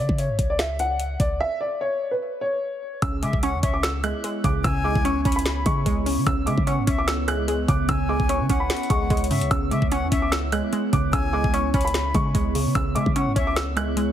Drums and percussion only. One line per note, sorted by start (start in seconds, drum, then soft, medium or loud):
0.09 kick medium
0.18 closed hi-hat medium
0.39 kick loud
0.39 closed hi-hat loud
0.59 finger snap medium
0.59 snare loud
0.59 closed hi-hat medium
0.79 closed hi-hat medium
1.00 closed hi-hat medium
1.20 kick medium
1.20 closed hi-hat medium
3.02 kick loud
3.02 closed hi-hat medium
3.23 closed hi-hat medium
3.33 kick loud
3.43 closed hi-hat medium
3.63 kick loud
3.63 closed hi-hat loud
3.83 finger snap medium
3.83 snare loud
3.83 closed hi-hat medium
4.04 closed hi-hat medium
4.24 closed hi-hat medium
4.44 kick medium
4.44 closed hi-hat medium
4.64 kick loud
4.64 closed hi-hat medium
4.95 kick loud
5.05 closed hi-hat medium
5.25 kick loud
5.25 closed hi-hat medium
5.32 closed hi-hat medium
5.39 closed hi-hat medium
5.46 finger snap medium
5.46 snare loud
5.46 closed hi-hat medium
5.66 kick loud
5.66 closed hi-hat medium
5.86 kick loud
5.86 closed hi-hat medium
6.06 open hi-hat medium
6.27 kick loud
6.27 closed hi-hat medium
6.47 closed hi-hat medium
6.58 kick medium
6.67 closed hi-hat medium
6.87 kick loud
6.87 closed hi-hat loud
7.08 finger snap medium
7.08 snare loud
7.08 closed hi-hat medium
7.28 closed hi-hat medium
7.48 closed hi-hat medium
7.68 kick medium
7.68 closed hi-hat medium
7.89 kick loud
7.89 closed hi-hat medium
8.20 kick medium
8.29 closed hi-hat medium
8.50 kick loud
8.50 closed hi-hat medium
8.70 finger snap medium
8.70 snare loud
8.70 closed hi-hat medium
8.77 closed hi-hat medium
8.83 closed hi-hat soft
8.90 kick loud
8.90 closed hi-hat medium
9.10 kick loud
9.10 closed hi-hat soft
9.17 closed hi-hat medium
9.24 closed hi-hat medium
9.31 closed hi-hat soft
9.31 open hi-hat medium
9.41 closed hi-hat medium
9.51 kick loud
9.51 closed hi-hat medium
9.71 closed hi-hat medium
9.82 kick loud
9.92 closed hi-hat medium
10.12 kick loud
10.12 closed hi-hat loud
10.32 finger snap medium
10.32 snare loud
10.32 closed hi-hat medium
10.52 closed hi-hat medium
10.73 closed hi-hat medium
10.93 kick medium
10.93 closed hi-hat medium
11.13 kick loud
11.13 closed hi-hat medium
11.44 kick medium
11.54 closed hi-hat medium
11.74 kick loud
11.74 closed hi-hat medium
11.81 closed hi-hat medium
11.87 closed hi-hat loud
11.94 finger snap medium
11.94 snare loud
11.94 closed hi-hat medium
12.14 kick loud
12.14 closed hi-hat medium
12.35 kick loud
12.35 closed hi-hat medium
12.55 open hi-hat medium
12.75 kick loud
12.75 closed hi-hat medium
12.96 closed hi-hat medium
13.06 kick medium
13.16 closed hi-hat medium
13.36 kick loud
13.36 closed hi-hat loud
13.56 finger snap medium
13.56 snare loud
13.56 closed hi-hat medium
13.77 closed hi-hat medium
13.97 closed hi-hat medium